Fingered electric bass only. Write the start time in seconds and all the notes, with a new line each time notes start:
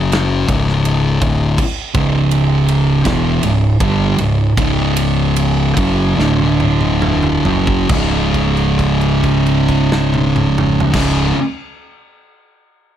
Already playing: F#1
0.48 C#1
1.22 D1
1.95 C#1
3.05 E1
3.43 C#1
3.80 G1
4.18 C#1
4.57 C#1
5.77 F#1
6.18 D1
7.46 F#1
7.90 C#1
10.94 C#1